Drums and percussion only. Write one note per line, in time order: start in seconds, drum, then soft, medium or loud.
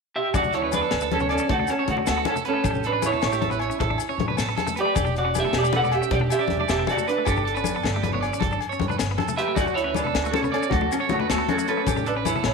0.34 kick medium
0.34 closed hi-hat medium
0.34 high conga medium
0.34 low agogo medium
0.34 maracas medium
0.44 low conga medium
0.44 maracas soft
0.53 closed hi-hat soft
0.53 maracas soft
0.72 closed hi-hat soft
0.72 high conga medium
0.72 low conga soft
0.72 low agogo medium
0.72 maracas medium
0.91 snare medium
0.91 closed hi-hat medium
0.91 low agogo medium
0.91 maracas soft
1.00 low conga soft
1.00 maracas medium
1.11 closed hi-hat soft
1.11 high conga medium
1.20 low conga medium
1.20 maracas soft
1.29 closed hi-hat soft
1.29 low agogo medium
1.38 maracas medium
1.49 kick medium
1.49 closed hi-hat medium
1.49 high conga medium
1.59 low conga medium
1.67 closed hi-hat medium
1.67 low conga soft
1.67 low agogo medium
1.67 maracas medium
1.78 low conga soft
1.88 closed hi-hat soft
1.88 high conga medium
1.88 low conga soft
1.97 low conga medium
2.07 snare medium
2.07 closed hi-hat medium
2.07 low agogo medium
2.07 maracas medium
2.25 closed hi-hat soft
2.25 high conga medium
2.25 low agogo medium
2.36 low conga medium
2.36 maracas medium
2.45 closed hi-hat soft
2.45 low conga soft
2.64 kick medium
2.64 closed hi-hat medium
2.64 high conga medium
2.64 low agogo medium
2.64 maracas medium
2.74 low conga medium
2.74 maracas soft
2.83 closed hi-hat soft
2.83 maracas soft
3.02 closed hi-hat soft
3.02 high conga medium
3.02 low conga soft
3.02 low agogo medium
3.02 maracas medium
3.14 low conga medium
3.22 snare medium
3.22 closed hi-hat medium
3.22 low agogo medium
3.22 maracas soft
3.32 low conga soft
3.32 maracas medium
3.42 closed hi-hat soft
3.42 high conga medium
3.51 low conga medium
3.51 maracas soft
3.59 closed hi-hat soft
3.59 low agogo medium
3.71 maracas medium
3.80 kick medium
3.80 closed hi-hat medium
3.80 high conga medium
3.91 low conga medium
3.98 closed hi-hat medium
3.98 low conga soft
3.98 low agogo medium
3.98 maracas medium
4.11 low conga soft
4.19 closed hi-hat soft
4.19 high conga medium
4.19 low conga soft
4.30 low conga medium
4.37 snare medium
4.37 closed hi-hat medium
4.37 low agogo medium
4.37 maracas medium
4.58 snare soft
4.58 closed hi-hat soft
4.58 high conga medium
4.58 low agogo medium
4.58 maracas soft
4.67 low conga medium
4.67 maracas medium
4.77 closed hi-hat medium
4.77 maracas soft
4.96 kick medium
4.96 closed hi-hat medium
4.96 high conga medium
4.96 low agogo medium
4.96 maracas medium
5.06 low conga medium
5.06 maracas soft
5.16 closed hi-hat soft
5.16 maracas soft
5.35 closed hi-hat soft
5.35 high conga medium
5.35 low conga soft
5.35 low agogo medium
5.35 maracas medium
5.45 low conga medium
5.53 snare medium
5.53 closed hi-hat medium
5.53 low agogo medium
5.53 maracas soft
5.64 low conga soft
5.64 maracas medium
5.73 closed hi-hat soft
5.73 high conga medium
5.82 low conga medium
5.82 maracas soft
5.92 closed hi-hat soft
5.92 low agogo medium
6.03 maracas medium
6.11 kick medium
6.11 closed hi-hat medium
6.11 high conga medium
6.20 low conga medium
6.29 closed hi-hat soft
6.29 low conga soft
6.29 low agogo medium
6.29 maracas medium
6.40 low conga soft
6.48 closed hi-hat soft
6.48 high conga medium
6.48 low conga soft
6.57 low conga medium
6.68 snare medium
6.68 closed hi-hat medium
6.68 low agogo medium
6.68 maracas medium
6.87 closed hi-hat soft
6.87 high conga medium
6.87 low agogo medium
6.87 maracas soft
6.97 low conga medium
6.97 maracas medium
7.07 closed hi-hat soft
7.07 low conga soft
7.07 maracas soft
7.25 kick medium
7.25 closed hi-hat medium
7.25 high conga medium
7.25 low agogo medium
7.25 maracas medium
7.36 low conga medium
7.36 maracas soft
7.45 closed hi-hat soft
7.45 low conga soft
7.55 low conga soft
7.55 maracas soft
7.64 closed hi-hat soft
7.64 high conga medium
7.64 low agogo medium
7.64 maracas medium
7.83 snare medium
7.83 closed hi-hat medium
7.83 low agogo medium
8.04 closed hi-hat soft
8.04 high conga medium
8.04 low conga soft
8.12 low conga medium
8.23 closed hi-hat soft
8.23 low conga soft
8.23 low agogo medium
8.23 maracas soft
8.32 low conga soft
8.32 maracas medium
8.41 kick medium
8.41 closed hi-hat medium
8.41 high conga medium
8.51 low conga medium
8.51 maracas soft
8.61 closed hi-hat soft
8.61 low conga soft
8.61 low agogo medium
8.70 low conga soft
8.70 maracas soft
8.80 closed hi-hat soft
8.80 high conga medium
8.89 low conga medium
8.89 maracas soft
8.99 snare medium
8.99 closed hi-hat medium
8.99 low agogo medium
8.99 maracas medium
9.08 low conga soft
9.18 closed hi-hat soft
9.18 high conga medium
9.18 low agogo medium
9.28 low conga medium
9.28 maracas medium
9.38 closed hi-hat soft
9.38 maracas soft
9.56 kick medium
9.56 closed hi-hat medium
9.56 high conga medium
9.56 low agogo medium
9.56 maracas medium
9.66 low conga medium
9.66 maracas soft
9.77 closed hi-hat soft
9.77 maracas soft
9.95 closed hi-hat soft
9.95 high conga medium
9.95 low conga soft
9.95 low agogo medium
9.95 maracas medium
10.05 low conga medium
10.15 snare medium
10.15 closed hi-hat medium
10.15 low agogo medium
10.15 maracas soft
10.25 maracas medium
10.34 closed hi-hat soft
10.34 high conga medium
10.43 low conga medium
10.43 maracas soft
10.54 closed hi-hat soft
10.54 low agogo medium
10.63 maracas medium
10.71 kick medium
10.71 closed hi-hat medium
10.71 high conga medium
10.81 low conga medium
10.90 closed hi-hat medium
10.90 low conga soft
10.90 low agogo medium
10.90 maracas medium
11.01 low conga soft
11.09 closed hi-hat soft
11.09 high conga medium
11.09 low conga soft
11.20 low conga medium
11.30 snare medium
11.30 closed hi-hat medium
11.30 low agogo medium
11.30 maracas medium
11.48 closed hi-hat soft
11.48 high conga medium
11.48 low agogo medium
11.48 maracas soft
11.59 maracas medium
11.67 closed hi-hat medium
11.67 maracas soft
11.86 kick medium
11.86 closed hi-hat medium
11.86 high conga medium
11.86 low agogo medium
11.86 maracas medium
11.97 low conga medium
11.97 maracas soft
12.06 closed hi-hat soft
12.06 maracas soft
12.25 closed hi-hat soft
12.25 high conga medium
12.25 low conga soft
12.25 low agogo medium
12.25 maracas medium
12.36 low conga medium
12.44 snare medium
12.44 closed hi-hat medium
12.44 low agogo medium
12.44 maracas soft